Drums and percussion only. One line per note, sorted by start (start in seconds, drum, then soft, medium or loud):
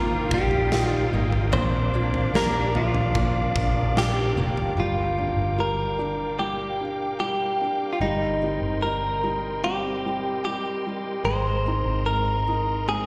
0.31 kick medium
0.51 floor tom medium
0.72 snare loud
1.32 floor tom medium
1.53 floor tom loud
2.14 floor tom medium
2.35 snare loud
2.75 floor tom medium
2.94 floor tom medium
3.15 kick medium
3.15 floor tom medium
3.56 kick medium
3.97 snare loud
4.57 floor tom medium